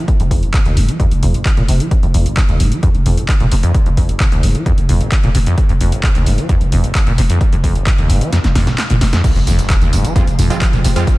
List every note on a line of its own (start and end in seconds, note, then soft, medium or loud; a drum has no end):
0.08 kick loud
0.08 closed hi-hat medium
0.20 0.30 F1 medium
0.20 0.23 F2 medium
0.20 closed hi-hat medium
0.31 0.42 F1 loud
0.31 0.44 F2 medium
0.31 kick medium
0.31 open hi-hat loud
0.43 0.55 F1 medium
0.43 closed hi-hat medium
0.54 0.60 D#3 medium
0.54 kick loud
0.54 clap loud
0.54 closed hi-hat medium
0.66 0.76 F1 medium
0.66 0.78 D#2 medium
0.66 closed hi-hat medium
0.77 0.88 F1 loud
0.77 0.90 G#2 medium
0.77 open hi-hat loud
0.88 0.98 F3 loud
0.88 closed hi-hat soft
1.00 1.06 F2 loud
1.00 kick loud
1.00 closed hi-hat medium
1.11 1.22 F1 medium
1.11 closed hi-hat medium
1.23 1.34 F1 loud
1.23 1.36 F2 medium
1.23 mid tom medium
1.23 open hi-hat loud
1.34 1.44 F1 medium
1.34 closed hi-hat medium
1.45 kick loud
1.45 clap loud
1.45 closed hi-hat medium
1.57 1.68 F1 medium
1.57 1.63 A#2 medium
1.57 closed hi-hat medium
1.57 mid tom medium
1.68 1.80 F1 loud
1.68 1.82 C3 medium
1.68 open hi-hat loud
1.80 1.89 F3 loud
1.80 closed hi-hat medium
1.91 kick loud
1.91 closed hi-hat medium
2.03 2.14 F1 medium
2.03 2.07 F2 medium
2.03 closed hi-hat soft
2.14 2.26 F1 loud
2.14 2.27 F2 medium
2.14 open hi-hat loud
2.26 2.39 F1 medium
2.26 closed hi-hat soft
2.37 2.44 D#3 medium
2.37 kick loud
2.37 clap loud
2.37 closed hi-hat medium
2.49 2.59 F1 medium
2.49 2.62 D#2 medium
2.49 closed hi-hat medium
2.60 2.71 F1 loud
2.60 2.73 G#2 medium
2.60 open hi-hat loud
2.72 2.81 F3 loud
2.72 closed hi-hat soft
2.83 2.89 F2 loud
2.83 kick loud
2.83 closed hi-hat medium
2.95 3.05 F1 medium
2.95 closed hi-hat soft
3.06 3.17 F1 loud
3.06 3.19 F2 medium
3.06 mid tom medium
3.06 open hi-hat loud
3.17 3.27 F1 medium
3.17 closed hi-hat medium
3.29 kick loud
3.29 clap loud
3.29 closed hi-hat medium
3.40 3.51 F1 medium
3.40 3.47 A#2 medium
3.40 closed hi-hat soft
3.40 mid tom medium
3.52 3.63 F1 loud
3.52 3.55 C3 medium
3.52 open hi-hat loud
3.63 3.73 F2 loud
3.63 closed hi-hat medium
3.74 kick loud
3.74 closed hi-hat medium
3.86 3.97 F1 medium
3.86 3.90 F2 medium
3.86 closed hi-hat soft
3.97 4.09 F1 loud
3.97 4.11 F2 medium
3.97 kick medium
3.97 open hi-hat loud
4.09 4.22 F1 medium
4.09 closed hi-hat medium
4.20 4.27 D#3 medium
4.20 kick loud
4.20 clap loud
4.20 closed hi-hat medium
4.32 4.43 F1 medium
4.32 4.45 D#2 medium
4.32 closed hi-hat soft
4.43 4.55 F1 medium
4.43 4.56 G#2 medium
4.43 open hi-hat loud
4.55 4.64 F3 loud
4.55 closed hi-hat soft
4.66 4.73 F2 loud
4.66 kick loud
4.66 closed hi-hat medium
4.78 4.88 F1 medium
4.78 closed hi-hat soft
4.89 5.00 F1 loud
4.89 5.02 F2 medium
4.89 mid tom medium
4.89 open hi-hat loud
5.01 5.10 F1 medium
5.01 closed hi-hat soft
5.12 kick loud
5.12 clap loud
5.12 closed hi-hat medium
5.23 5.34 F1 medium
5.23 5.30 A#2 medium
5.23 closed hi-hat medium
5.23 mid tom medium
5.35 5.46 F1 loud
5.35 5.39 C3 medium
5.35 open hi-hat loud
5.46 5.56 F2 loud
5.46 closed hi-hat medium
5.58 kick loud
5.58 closed hi-hat medium
5.69 5.80 F1 medium
5.69 5.73 F2 medium
5.69 closed hi-hat medium
5.81 5.92 F1 loud
5.81 5.94 F2 medium
5.81 open hi-hat loud
5.92 6.05 F1 medium
5.92 closed hi-hat medium
6.03 6.10 D#3 medium
6.03 kick loud
6.03 clap loud
6.03 closed hi-hat medium
6.15 6.26 F1 medium
6.15 6.28 D#2 medium
6.15 closed hi-hat medium
6.26 6.38 F1 loud
6.26 6.39 G#2 medium
6.26 open hi-hat loud
6.38 6.47 F3 loud
6.38 closed hi-hat medium
6.49 6.56 F2 loud
6.49 kick loud
6.49 closed hi-hat medium
6.61 6.72 F1 medium
6.61 closed hi-hat medium
6.72 6.84 F1 loud
6.72 6.85 F2 medium
6.72 mid tom medium
6.72 open hi-hat loud
6.84 6.93 F1 medium
6.84 closed hi-hat medium
6.95 kick loud
6.95 clap loud
6.95 closed hi-hat medium
7.07 7.17 F1 medium
7.07 7.13 A#2 medium
7.07 closed hi-hat medium
7.07 mid tom medium
7.18 7.29 F1 loud
7.18 7.22 C3 medium
7.18 open hi-hat loud
7.30 7.39 F2 loud
7.30 closed hi-hat medium
7.41 kick loud
7.41 closed hi-hat medium
7.52 7.63 F1 medium
7.52 7.56 F2 medium
7.52 closed hi-hat medium
7.64 7.75 F1 loud
7.64 7.77 F2 medium
7.64 kick medium
7.64 open hi-hat loud
7.75 7.88 F1 medium
7.75 closed hi-hat medium
7.87 7.93 D#3 medium
7.87 kick loud
7.87 clap loud
7.87 closed hi-hat medium
7.98 8.09 F1 medium
7.98 8.11 D#2 medium
7.98 closed hi-hat medium
8.10 8.21 F1 loud
8.10 8.23 G#2 medium
8.10 open hi-hat loud
8.21 8.31 F3 loud
8.21 closed hi-hat medium
8.32 8.39 F2 loud
8.32 snare medium
8.32 closed hi-hat medium
8.44 8.55 F1 medium
8.44 snare medium
8.44 closed hi-hat medium
8.55 8.67 F1 loud
8.55 8.68 F2 medium
8.55 snare medium
8.55 mid tom medium
8.55 open hi-hat loud
8.67 8.76 F1 medium
8.67 snare medium
8.67 closed hi-hat medium
8.67 mid tom medium
8.78 snare medium
8.78 clap loud
8.78 closed hi-hat medium
8.90 9.01 F1 medium
8.90 8.96 A#2 medium
8.90 closed hi-hat medium
8.90 mid tom medium
9.01 9.13 F1 loud
9.01 9.05 C3 medium
9.01 snare loud
9.01 open hi-hat loud
9.13 9.22 F2 loud
9.13 snare medium
9.13 closed hi-hat medium
9.24 11.18 F3 medium
9.24 11.18 F4 medium
9.24 kick loud
9.24 closed hi-hat medium
9.24 crash loud
9.24 tambourine soft
9.24 impact medium
9.36 9.46 F1 medium
9.36 9.39 F2 medium
9.36 closed hi-hat medium
9.36 tambourine soft
9.47 9.58 F1 loud
9.47 9.60 F2 medium
9.47 open hi-hat loud
9.47 tambourine medium
9.59 9.71 F1 medium
9.59 closed hi-hat medium
9.59 tambourine soft
9.68 9.76 D#3 medium
9.68 11.18 C5 medium
9.68 11.18 G5 medium
9.68 kick loud
9.68 clap loud
9.68 closed hi-hat loud
9.68 tambourine soft
9.82 9.92 F1 medium
9.82 9.94 D#2 medium
9.82 closed hi-hat medium
9.82 tambourine soft
9.93 10.04 F1 loud
9.93 10.06 G#2 medium
9.93 open hi-hat loud
9.93 tambourine medium
10.04 10.14 F3 loud
10.04 closed hi-hat medium
10.04 tambourine soft
10.16 10.22 F2 loud
10.16 10.23 G#3 medium
10.16 10.23 C4 medium
10.16 10.23 F4 medium
10.16 kick loud
10.16 closed hi-hat loud
10.16 tambourine soft
10.27 10.38 F1 medium
10.27 closed hi-hat medium
10.27 tambourine soft
10.39 10.50 F1 loud
10.39 10.52 F2 medium
10.39 mid tom medium
10.39 open hi-hat loud
10.39 tambourine medium
10.50 10.60 F1 medium
10.50 10.57 G#3 medium
10.50 10.57 C4 medium
10.50 10.57 F4 medium
10.50 closed hi-hat medium
10.50 tambourine soft
10.62 kick loud
10.62 clap loud
10.62 closed hi-hat loud
10.62 tambourine soft
10.73 10.84 F1 medium
10.73 10.79 A#2 medium
10.73 closed hi-hat medium
10.73 mid tom medium
10.73 tambourine soft
10.84 10.96 F1 loud
10.84 10.88 C3 medium
10.84 open hi-hat loud
10.84 tambourine medium
10.96 11.05 F2 loud
10.96 11.03 G#3 loud
10.96 11.03 C4 medium
10.96 11.03 F4 loud
10.96 closed hi-hat medium
10.96 tambourine soft
11.07 kick loud
11.07 closed hi-hat medium
11.07 tambourine soft